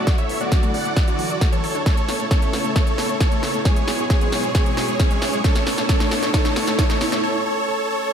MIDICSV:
0, 0, Header, 1, 6, 480
1, 0, Start_track
1, 0, Key_signature, 3, "major"
1, 0, Tempo, 447761
1, 76, Time_signature, 4, 2, 24, 8
1, 8715, End_track
2, 0, Start_track
2, 0, Title_t, "Supersaw synth"
2, 0, Program_c, 0, 81
2, 0, Note_on_c, 0, 66, 78
2, 0, Note_on_c, 0, 74, 91
2, 170, Note_off_c, 0, 66, 0
2, 170, Note_off_c, 0, 74, 0
2, 196, Note_on_c, 0, 73, 79
2, 196, Note_on_c, 0, 76, 92
2, 411, Note_off_c, 0, 73, 0
2, 411, Note_off_c, 0, 76, 0
2, 437, Note_on_c, 0, 66, 78
2, 437, Note_on_c, 0, 74, 96
2, 759, Note_off_c, 0, 66, 0
2, 759, Note_off_c, 0, 74, 0
2, 794, Note_on_c, 0, 78, 95
2, 795, Note_on_c, 0, 74, 78
2, 1117, Note_off_c, 0, 74, 0
2, 1117, Note_off_c, 0, 78, 0
2, 1155, Note_on_c, 0, 66, 80
2, 1155, Note_on_c, 0, 74, 96
2, 1585, Note_off_c, 0, 66, 0
2, 1585, Note_off_c, 0, 74, 0
2, 1635, Note_on_c, 0, 69, 77
2, 1635, Note_on_c, 0, 73, 95
2, 1958, Note_off_c, 0, 69, 0
2, 1958, Note_off_c, 0, 73, 0
2, 1996, Note_on_c, 0, 73, 94
2, 1997, Note_on_c, 0, 69, 72
2, 2426, Note_off_c, 0, 69, 0
2, 2426, Note_off_c, 0, 73, 0
2, 2476, Note_on_c, 0, 69, 70
2, 2477, Note_on_c, 0, 73, 87
2, 2905, Note_off_c, 0, 69, 0
2, 2906, Note_off_c, 0, 73, 0
2, 2955, Note_on_c, 0, 69, 73
2, 2955, Note_on_c, 0, 73, 93
2, 3385, Note_off_c, 0, 69, 0
2, 3385, Note_off_c, 0, 73, 0
2, 3435, Note_on_c, 0, 69, 75
2, 3435, Note_on_c, 0, 73, 91
2, 3865, Note_off_c, 0, 69, 0
2, 3865, Note_off_c, 0, 73, 0
2, 3916, Note_on_c, 0, 68, 74
2, 3916, Note_on_c, 0, 73, 98
2, 4346, Note_off_c, 0, 68, 0
2, 4346, Note_off_c, 0, 73, 0
2, 4397, Note_on_c, 0, 68, 76
2, 4397, Note_on_c, 0, 73, 92
2, 4826, Note_off_c, 0, 68, 0
2, 4826, Note_off_c, 0, 73, 0
2, 4876, Note_on_c, 0, 68, 72
2, 4876, Note_on_c, 0, 73, 95
2, 5305, Note_off_c, 0, 68, 0
2, 5306, Note_off_c, 0, 73, 0
2, 5355, Note_on_c, 0, 68, 78
2, 5355, Note_on_c, 0, 73, 94
2, 5785, Note_off_c, 0, 68, 0
2, 5785, Note_off_c, 0, 73, 0
2, 5836, Note_on_c, 0, 69, 78
2, 5836, Note_on_c, 0, 73, 99
2, 6266, Note_off_c, 0, 69, 0
2, 6266, Note_off_c, 0, 73, 0
2, 6315, Note_on_c, 0, 69, 78
2, 6316, Note_on_c, 0, 73, 100
2, 6745, Note_off_c, 0, 69, 0
2, 6745, Note_off_c, 0, 73, 0
2, 6795, Note_on_c, 0, 69, 77
2, 6796, Note_on_c, 0, 73, 101
2, 7225, Note_off_c, 0, 69, 0
2, 7225, Note_off_c, 0, 73, 0
2, 7274, Note_on_c, 0, 69, 80
2, 7274, Note_on_c, 0, 73, 104
2, 7704, Note_off_c, 0, 69, 0
2, 7705, Note_off_c, 0, 73, 0
2, 7755, Note_on_c, 0, 69, 78
2, 7755, Note_on_c, 0, 73, 104
2, 7976, Note_off_c, 0, 69, 0
2, 7976, Note_off_c, 0, 73, 0
2, 7995, Note_on_c, 0, 69, 78
2, 7995, Note_on_c, 0, 73, 105
2, 8216, Note_off_c, 0, 69, 0
2, 8216, Note_off_c, 0, 73, 0
2, 8234, Note_on_c, 0, 69, 79
2, 8235, Note_on_c, 0, 73, 99
2, 8456, Note_off_c, 0, 69, 0
2, 8456, Note_off_c, 0, 73, 0
2, 8474, Note_on_c, 0, 69, 79
2, 8475, Note_on_c, 0, 73, 104
2, 8696, Note_off_c, 0, 69, 0
2, 8696, Note_off_c, 0, 73, 0
2, 8715, End_track
3, 0, Start_track
3, 0, Title_t, "Supersaw synth"
3, 0, Program_c, 1, 81
3, 0, Note_on_c, 1, 69, 90
3, 75, Note_on_c, 1, 54, 77
3, 75, Note_on_c, 1, 64, 77
3, 76, Note_on_c, 1, 50, 81
3, 1976, Note_off_c, 1, 54, 0
3, 1976, Note_off_c, 1, 64, 0
3, 1977, Note_off_c, 1, 50, 0
3, 1996, Note_on_c, 1, 49, 82
3, 1996, Note_on_c, 1, 57, 74
3, 1997, Note_on_c, 1, 64, 78
3, 3873, Note_off_c, 1, 69, 0
3, 3897, Note_off_c, 1, 49, 0
3, 3897, Note_off_c, 1, 57, 0
3, 3915, Note_on_c, 1, 47, 85
3, 3915, Note_on_c, 1, 54, 76
3, 3915, Note_on_c, 1, 68, 92
3, 5816, Note_off_c, 1, 47, 0
3, 5816, Note_off_c, 1, 54, 0
3, 5816, Note_off_c, 1, 68, 0
3, 5836, Note_on_c, 1, 49, 82
3, 5837, Note_on_c, 1, 57, 76
3, 5837, Note_on_c, 1, 69, 90
3, 7713, Note_off_c, 1, 64, 0
3, 7737, Note_off_c, 1, 49, 0
3, 7737, Note_off_c, 1, 57, 0
3, 7737, Note_off_c, 1, 69, 0
3, 8715, End_track
4, 0, Start_track
4, 0, Title_t, "Synth pluck"
4, 0, Program_c, 2, 84
4, 75, Note_on_c, 2, 57, 84
4, 141, Note_off_c, 2, 57, 0
4, 195, Note_on_c, 2, 57, 75
4, 294, Note_off_c, 2, 57, 0
4, 315, Note_on_c, 2, 59, 76
4, 355, Note_off_c, 2, 59, 0
4, 436, Note_on_c, 2, 57, 72
4, 501, Note_off_c, 2, 57, 0
4, 555, Note_on_c, 2, 61, 82
4, 621, Note_off_c, 2, 61, 0
4, 675, Note_on_c, 2, 57, 101
4, 741, Note_off_c, 2, 57, 0
4, 795, Note_on_c, 2, 59, 72
4, 861, Note_off_c, 2, 59, 0
4, 915, Note_on_c, 2, 57, 73
4, 981, Note_off_c, 2, 57, 0
4, 1035, Note_on_c, 2, 57, 77
4, 1101, Note_off_c, 2, 57, 0
4, 1155, Note_on_c, 2, 57, 76
4, 1254, Note_off_c, 2, 57, 0
4, 1275, Note_on_c, 2, 52, 72
4, 1341, Note_off_c, 2, 52, 0
4, 1394, Note_on_c, 2, 69, 75
4, 1460, Note_off_c, 2, 69, 0
4, 1515, Note_on_c, 2, 69, 82
4, 1614, Note_off_c, 2, 69, 0
4, 1635, Note_on_c, 2, 52, 99
4, 1701, Note_off_c, 2, 52, 0
4, 1755, Note_on_c, 2, 69, 97
4, 1821, Note_off_c, 2, 69, 0
4, 1874, Note_on_c, 2, 62, 78
4, 1941, Note_off_c, 2, 62, 0
4, 1996, Note_on_c, 2, 57, 72
4, 2061, Note_off_c, 2, 57, 0
4, 2116, Note_on_c, 2, 57, 70
4, 2214, Note_off_c, 2, 57, 0
4, 2236, Note_on_c, 2, 59, 72
4, 2275, Note_off_c, 2, 59, 0
4, 2356, Note_on_c, 2, 57, 67
4, 2421, Note_off_c, 2, 57, 0
4, 2475, Note_on_c, 2, 61, 75
4, 2541, Note_off_c, 2, 61, 0
4, 2595, Note_on_c, 2, 57, 91
4, 2661, Note_off_c, 2, 57, 0
4, 2715, Note_on_c, 2, 59, 72
4, 2781, Note_off_c, 2, 59, 0
4, 2835, Note_on_c, 2, 57, 71
4, 2901, Note_off_c, 2, 57, 0
4, 2955, Note_on_c, 2, 57, 78
4, 3021, Note_off_c, 2, 57, 0
4, 3075, Note_on_c, 2, 57, 72
4, 3174, Note_off_c, 2, 57, 0
4, 3196, Note_on_c, 2, 59, 69
4, 3235, Note_off_c, 2, 59, 0
4, 3315, Note_on_c, 2, 57, 71
4, 3381, Note_off_c, 2, 57, 0
4, 3435, Note_on_c, 2, 61, 79
4, 3501, Note_off_c, 2, 61, 0
4, 3555, Note_on_c, 2, 57, 90
4, 3621, Note_off_c, 2, 57, 0
4, 3675, Note_on_c, 2, 59, 72
4, 3741, Note_off_c, 2, 59, 0
4, 3794, Note_on_c, 2, 57, 72
4, 3861, Note_off_c, 2, 57, 0
4, 3914, Note_on_c, 2, 56, 77
4, 3980, Note_off_c, 2, 56, 0
4, 4035, Note_on_c, 2, 56, 72
4, 4134, Note_off_c, 2, 56, 0
4, 4155, Note_on_c, 2, 59, 77
4, 4195, Note_off_c, 2, 59, 0
4, 4275, Note_on_c, 2, 56, 71
4, 4341, Note_off_c, 2, 56, 0
4, 4395, Note_on_c, 2, 61, 78
4, 4461, Note_off_c, 2, 61, 0
4, 4515, Note_on_c, 2, 56, 97
4, 4581, Note_off_c, 2, 56, 0
4, 4635, Note_on_c, 2, 59, 69
4, 4701, Note_off_c, 2, 59, 0
4, 4755, Note_on_c, 2, 56, 74
4, 4821, Note_off_c, 2, 56, 0
4, 4876, Note_on_c, 2, 56, 80
4, 4941, Note_off_c, 2, 56, 0
4, 4995, Note_on_c, 2, 56, 73
4, 5094, Note_off_c, 2, 56, 0
4, 5115, Note_on_c, 2, 59, 69
4, 5155, Note_off_c, 2, 59, 0
4, 5235, Note_on_c, 2, 56, 77
4, 5301, Note_off_c, 2, 56, 0
4, 5355, Note_on_c, 2, 61, 81
4, 5421, Note_off_c, 2, 61, 0
4, 5475, Note_on_c, 2, 56, 96
4, 5541, Note_off_c, 2, 56, 0
4, 5595, Note_on_c, 2, 59, 72
4, 5661, Note_off_c, 2, 59, 0
4, 5715, Note_on_c, 2, 56, 78
4, 5781, Note_off_c, 2, 56, 0
4, 5835, Note_on_c, 2, 57, 78
4, 5901, Note_off_c, 2, 57, 0
4, 5955, Note_on_c, 2, 57, 76
4, 6054, Note_off_c, 2, 57, 0
4, 6075, Note_on_c, 2, 59, 78
4, 6115, Note_off_c, 2, 59, 0
4, 6195, Note_on_c, 2, 57, 71
4, 6261, Note_off_c, 2, 57, 0
4, 6314, Note_on_c, 2, 57, 81
4, 6380, Note_off_c, 2, 57, 0
4, 6434, Note_on_c, 2, 57, 77
4, 6533, Note_off_c, 2, 57, 0
4, 6554, Note_on_c, 2, 59, 78
4, 6594, Note_off_c, 2, 59, 0
4, 6674, Note_on_c, 2, 57, 77
4, 6740, Note_off_c, 2, 57, 0
4, 6794, Note_on_c, 2, 57, 85
4, 6860, Note_off_c, 2, 57, 0
4, 6915, Note_on_c, 2, 57, 77
4, 7013, Note_off_c, 2, 57, 0
4, 7034, Note_on_c, 2, 59, 74
4, 7074, Note_off_c, 2, 59, 0
4, 7155, Note_on_c, 2, 57, 79
4, 7221, Note_off_c, 2, 57, 0
4, 7275, Note_on_c, 2, 57, 85
4, 7341, Note_off_c, 2, 57, 0
4, 7396, Note_on_c, 2, 57, 75
4, 7494, Note_off_c, 2, 57, 0
4, 7516, Note_on_c, 2, 59, 78
4, 7555, Note_off_c, 2, 59, 0
4, 7636, Note_on_c, 2, 57, 82
4, 7701, Note_off_c, 2, 57, 0
4, 8715, End_track
5, 0, Start_track
5, 0, Title_t, "Riser"
5, 0, Program_c, 3, 103
5, 0, Note_on_c, 3, 60, 72
5, 7756, Note_off_c, 3, 60, 0
5, 8715, End_track
6, 0, Start_track
6, 0, Title_t, "Drums"
6, 74, Note_on_c, 9, 38, 65
6, 74, Note_on_c, 9, 42, 88
6, 75, Note_on_c, 9, 36, 117
6, 181, Note_off_c, 9, 38, 0
6, 181, Note_off_c, 9, 42, 0
6, 182, Note_off_c, 9, 36, 0
6, 195, Note_on_c, 9, 42, 49
6, 302, Note_off_c, 9, 42, 0
6, 315, Note_on_c, 9, 46, 104
6, 422, Note_off_c, 9, 46, 0
6, 435, Note_on_c, 9, 42, 49
6, 542, Note_off_c, 9, 42, 0
6, 555, Note_on_c, 9, 36, 122
6, 555, Note_on_c, 9, 38, 65
6, 555, Note_on_c, 9, 42, 85
6, 662, Note_off_c, 9, 36, 0
6, 662, Note_off_c, 9, 38, 0
6, 662, Note_off_c, 9, 42, 0
6, 675, Note_on_c, 9, 42, 49
6, 782, Note_off_c, 9, 42, 0
6, 795, Note_on_c, 9, 46, 94
6, 902, Note_off_c, 9, 46, 0
6, 915, Note_on_c, 9, 42, 47
6, 1022, Note_off_c, 9, 42, 0
6, 1034, Note_on_c, 9, 38, 69
6, 1034, Note_on_c, 9, 42, 84
6, 1035, Note_on_c, 9, 36, 115
6, 1141, Note_off_c, 9, 38, 0
6, 1141, Note_off_c, 9, 42, 0
6, 1142, Note_off_c, 9, 36, 0
6, 1155, Note_on_c, 9, 42, 49
6, 1262, Note_off_c, 9, 42, 0
6, 1274, Note_on_c, 9, 46, 103
6, 1381, Note_off_c, 9, 46, 0
6, 1394, Note_on_c, 9, 42, 47
6, 1501, Note_off_c, 9, 42, 0
6, 1515, Note_on_c, 9, 36, 113
6, 1515, Note_on_c, 9, 38, 70
6, 1515, Note_on_c, 9, 42, 86
6, 1622, Note_off_c, 9, 36, 0
6, 1622, Note_off_c, 9, 38, 0
6, 1622, Note_off_c, 9, 42, 0
6, 1635, Note_on_c, 9, 42, 49
6, 1743, Note_off_c, 9, 42, 0
6, 1755, Note_on_c, 9, 46, 93
6, 1862, Note_off_c, 9, 46, 0
6, 1875, Note_on_c, 9, 42, 50
6, 1982, Note_off_c, 9, 42, 0
6, 1995, Note_on_c, 9, 36, 118
6, 1995, Note_on_c, 9, 38, 72
6, 1995, Note_on_c, 9, 42, 84
6, 2102, Note_off_c, 9, 38, 0
6, 2102, Note_off_c, 9, 42, 0
6, 2103, Note_off_c, 9, 36, 0
6, 2115, Note_on_c, 9, 42, 50
6, 2222, Note_off_c, 9, 42, 0
6, 2235, Note_on_c, 9, 38, 75
6, 2235, Note_on_c, 9, 46, 102
6, 2342, Note_off_c, 9, 38, 0
6, 2342, Note_off_c, 9, 46, 0
6, 2356, Note_on_c, 9, 42, 48
6, 2463, Note_off_c, 9, 42, 0
6, 2476, Note_on_c, 9, 36, 117
6, 2476, Note_on_c, 9, 38, 70
6, 2476, Note_on_c, 9, 42, 84
6, 2583, Note_off_c, 9, 36, 0
6, 2583, Note_off_c, 9, 38, 0
6, 2583, Note_off_c, 9, 42, 0
6, 2596, Note_on_c, 9, 42, 50
6, 2703, Note_off_c, 9, 42, 0
6, 2716, Note_on_c, 9, 38, 73
6, 2716, Note_on_c, 9, 46, 87
6, 2823, Note_off_c, 9, 38, 0
6, 2823, Note_off_c, 9, 46, 0
6, 2836, Note_on_c, 9, 42, 49
6, 2943, Note_off_c, 9, 42, 0
6, 2956, Note_on_c, 9, 36, 110
6, 2956, Note_on_c, 9, 38, 78
6, 2956, Note_on_c, 9, 42, 88
6, 3063, Note_off_c, 9, 36, 0
6, 3063, Note_off_c, 9, 38, 0
6, 3063, Note_off_c, 9, 42, 0
6, 3076, Note_on_c, 9, 42, 51
6, 3183, Note_off_c, 9, 42, 0
6, 3196, Note_on_c, 9, 38, 77
6, 3196, Note_on_c, 9, 46, 103
6, 3303, Note_off_c, 9, 38, 0
6, 3303, Note_off_c, 9, 46, 0
6, 3316, Note_on_c, 9, 42, 49
6, 3423, Note_off_c, 9, 42, 0
6, 3435, Note_on_c, 9, 38, 80
6, 3435, Note_on_c, 9, 42, 85
6, 3436, Note_on_c, 9, 36, 113
6, 3543, Note_off_c, 9, 36, 0
6, 3543, Note_off_c, 9, 38, 0
6, 3543, Note_off_c, 9, 42, 0
6, 3556, Note_on_c, 9, 42, 48
6, 3663, Note_off_c, 9, 42, 0
6, 3676, Note_on_c, 9, 38, 77
6, 3676, Note_on_c, 9, 46, 87
6, 3783, Note_off_c, 9, 38, 0
6, 3783, Note_off_c, 9, 46, 0
6, 3796, Note_on_c, 9, 42, 49
6, 3903, Note_off_c, 9, 42, 0
6, 3916, Note_on_c, 9, 36, 116
6, 3916, Note_on_c, 9, 38, 81
6, 3916, Note_on_c, 9, 42, 91
6, 4023, Note_off_c, 9, 36, 0
6, 4023, Note_off_c, 9, 38, 0
6, 4023, Note_off_c, 9, 42, 0
6, 4035, Note_on_c, 9, 42, 54
6, 4143, Note_off_c, 9, 42, 0
6, 4156, Note_on_c, 9, 38, 86
6, 4156, Note_on_c, 9, 46, 102
6, 4263, Note_off_c, 9, 38, 0
6, 4263, Note_off_c, 9, 46, 0
6, 4276, Note_on_c, 9, 42, 51
6, 4383, Note_off_c, 9, 42, 0
6, 4395, Note_on_c, 9, 38, 77
6, 4395, Note_on_c, 9, 42, 87
6, 4396, Note_on_c, 9, 36, 115
6, 4503, Note_off_c, 9, 36, 0
6, 4503, Note_off_c, 9, 38, 0
6, 4503, Note_off_c, 9, 42, 0
6, 4516, Note_on_c, 9, 42, 51
6, 4624, Note_off_c, 9, 42, 0
6, 4635, Note_on_c, 9, 38, 88
6, 4635, Note_on_c, 9, 46, 90
6, 4743, Note_off_c, 9, 38, 0
6, 4743, Note_off_c, 9, 46, 0
6, 4755, Note_on_c, 9, 42, 51
6, 4862, Note_off_c, 9, 42, 0
6, 4875, Note_on_c, 9, 38, 83
6, 4875, Note_on_c, 9, 42, 92
6, 4876, Note_on_c, 9, 36, 114
6, 4982, Note_off_c, 9, 38, 0
6, 4982, Note_off_c, 9, 42, 0
6, 4983, Note_off_c, 9, 36, 0
6, 4996, Note_on_c, 9, 42, 50
6, 5103, Note_off_c, 9, 42, 0
6, 5116, Note_on_c, 9, 38, 87
6, 5116, Note_on_c, 9, 46, 102
6, 5223, Note_off_c, 9, 38, 0
6, 5223, Note_off_c, 9, 46, 0
6, 5236, Note_on_c, 9, 42, 50
6, 5343, Note_off_c, 9, 42, 0
6, 5355, Note_on_c, 9, 38, 88
6, 5355, Note_on_c, 9, 42, 88
6, 5356, Note_on_c, 9, 36, 108
6, 5462, Note_off_c, 9, 38, 0
6, 5462, Note_off_c, 9, 42, 0
6, 5463, Note_off_c, 9, 36, 0
6, 5475, Note_on_c, 9, 42, 53
6, 5582, Note_off_c, 9, 42, 0
6, 5594, Note_on_c, 9, 38, 89
6, 5594, Note_on_c, 9, 46, 90
6, 5702, Note_off_c, 9, 38, 0
6, 5702, Note_off_c, 9, 46, 0
6, 5715, Note_on_c, 9, 42, 52
6, 5822, Note_off_c, 9, 42, 0
6, 5835, Note_on_c, 9, 38, 91
6, 5835, Note_on_c, 9, 42, 94
6, 5836, Note_on_c, 9, 36, 112
6, 5942, Note_off_c, 9, 38, 0
6, 5942, Note_off_c, 9, 42, 0
6, 5943, Note_off_c, 9, 36, 0
6, 5955, Note_on_c, 9, 38, 81
6, 5955, Note_on_c, 9, 42, 56
6, 6062, Note_off_c, 9, 38, 0
6, 6062, Note_off_c, 9, 42, 0
6, 6074, Note_on_c, 9, 38, 92
6, 6074, Note_on_c, 9, 46, 100
6, 6182, Note_off_c, 9, 38, 0
6, 6182, Note_off_c, 9, 46, 0
6, 6195, Note_on_c, 9, 38, 82
6, 6195, Note_on_c, 9, 42, 52
6, 6302, Note_off_c, 9, 38, 0
6, 6302, Note_off_c, 9, 42, 0
6, 6315, Note_on_c, 9, 36, 114
6, 6315, Note_on_c, 9, 38, 92
6, 6315, Note_on_c, 9, 42, 91
6, 6422, Note_off_c, 9, 38, 0
6, 6422, Note_off_c, 9, 42, 0
6, 6423, Note_off_c, 9, 36, 0
6, 6435, Note_on_c, 9, 38, 87
6, 6435, Note_on_c, 9, 42, 55
6, 6542, Note_off_c, 9, 38, 0
6, 6542, Note_off_c, 9, 42, 0
6, 6554, Note_on_c, 9, 38, 99
6, 6554, Note_on_c, 9, 46, 89
6, 6662, Note_off_c, 9, 38, 0
6, 6662, Note_off_c, 9, 46, 0
6, 6675, Note_on_c, 9, 38, 82
6, 6675, Note_on_c, 9, 42, 55
6, 6782, Note_off_c, 9, 38, 0
6, 6782, Note_off_c, 9, 42, 0
6, 6795, Note_on_c, 9, 36, 105
6, 6795, Note_on_c, 9, 38, 100
6, 6795, Note_on_c, 9, 42, 92
6, 6903, Note_off_c, 9, 36, 0
6, 6903, Note_off_c, 9, 38, 0
6, 6903, Note_off_c, 9, 42, 0
6, 6915, Note_on_c, 9, 38, 87
6, 6915, Note_on_c, 9, 42, 55
6, 7022, Note_off_c, 9, 38, 0
6, 7022, Note_off_c, 9, 42, 0
6, 7034, Note_on_c, 9, 38, 102
6, 7034, Note_on_c, 9, 46, 98
6, 7142, Note_off_c, 9, 38, 0
6, 7142, Note_off_c, 9, 46, 0
6, 7155, Note_on_c, 9, 38, 85
6, 7155, Note_on_c, 9, 42, 54
6, 7262, Note_off_c, 9, 38, 0
6, 7262, Note_off_c, 9, 42, 0
6, 7275, Note_on_c, 9, 36, 107
6, 7275, Note_on_c, 9, 38, 99
6, 7275, Note_on_c, 9, 42, 93
6, 7382, Note_off_c, 9, 36, 0
6, 7382, Note_off_c, 9, 38, 0
6, 7382, Note_off_c, 9, 42, 0
6, 7395, Note_on_c, 9, 38, 88
6, 7395, Note_on_c, 9, 42, 57
6, 7502, Note_off_c, 9, 38, 0
6, 7502, Note_off_c, 9, 42, 0
6, 7514, Note_on_c, 9, 38, 97
6, 7514, Note_on_c, 9, 46, 86
6, 7622, Note_off_c, 9, 38, 0
6, 7622, Note_off_c, 9, 46, 0
6, 7635, Note_on_c, 9, 38, 93
6, 7635, Note_on_c, 9, 42, 53
6, 7742, Note_off_c, 9, 38, 0
6, 7742, Note_off_c, 9, 42, 0
6, 8715, End_track
0, 0, End_of_file